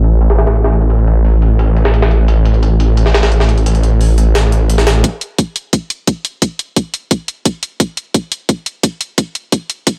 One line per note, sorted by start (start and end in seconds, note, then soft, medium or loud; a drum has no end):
0.00 5.02 A1 medium
0.04 closed hi-hat medium
0.21 closed hi-hat medium
0.30 snare soft
0.39 snare soft
0.39 closed hi-hat medium
0.47 snare medium
0.56 closed hi-hat medium
0.64 snare soft
0.73 closed hi-hat medium
0.82 closed hi-hat soft
0.90 closed hi-hat medium
0.99 closed hi-hat soft
1.07 closed hi-hat medium
1.25 open hi-hat medium
1.42 closed hi-hat medium
1.59 closed hi-hat medium
1.76 closed hi-hat medium
1.85 snare medium
1.94 closed hi-hat medium
2.02 snare soft
2.11 closed hi-hat medium
2.28 closed hi-hat medium
2.45 closed hi-hat medium
2.54 closed hi-hat soft
2.63 closed hi-hat medium
2.80 closed hi-hat medium
2.97 closed hi-hat medium
3.06 snare soft
3.14 snare medium
3.14 closed hi-hat medium
3.23 snare loud
3.23 closed hi-hat medium
3.32 closed hi-hat medium
3.40 snare soft
3.49 closed hi-hat medium
3.58 closed hi-hat soft
3.66 closed hi-hat medium
3.75 closed hi-hat soft
3.83 closed hi-hat medium
4.01 open hi-hat medium
4.18 closed hi-hat medium
4.35 snare loud
4.35 closed hi-hat medium
4.52 closed hi-hat medium
4.70 closed hi-hat medium
4.78 snare soft
4.87 snare loud
4.87 closed hi-hat medium
5.04 kick medium
5.04 closed hi-hat loud
5.21 closed hi-hat medium
5.38 kick medium
5.38 closed hi-hat medium
5.56 closed hi-hat medium
5.73 kick loud
5.73 closed hi-hat medium
5.90 closed hi-hat medium
6.07 kick loud
6.07 closed hi-hat loud
6.25 closed hi-hat medium
6.42 kick medium
6.42 closed hi-hat loud
6.59 closed hi-hat medium
6.76 kick medium
6.76 closed hi-hat medium
6.94 closed hi-hat medium
7.11 kick medium
7.11 closed hi-hat medium
7.28 closed hi-hat medium
7.45 kick medium
7.45 closed hi-hat medium
7.63 closed hi-hat medium
7.80 kick loud
7.80 closed hi-hat loud
7.97 closed hi-hat medium
8.14 kick loud
8.14 closed hi-hat loud
8.32 closed hi-hat medium
8.49 kick medium
8.49 closed hi-hat loud
8.66 closed hi-hat medium
8.83 kick loud
8.83 closed hi-hat medium
9.01 closed hi-hat medium
9.18 kick medium
9.18 closed hi-hat medium
9.35 closed hi-hat medium
9.52 kick medium
9.52 closed hi-hat medium
9.70 closed hi-hat medium
9.87 kick medium
9.87 closed hi-hat medium